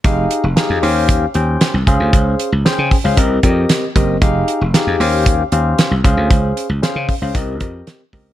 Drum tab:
HH |xxxoxxxx|xxxoxxxx|xxxoxxxx|xxxoxxxo|
SD |--o---o-|--o---o-|--o---o-|--o---o-|
BD |o---o--o|o--ooo-o|o---o--o|o--ooo-o|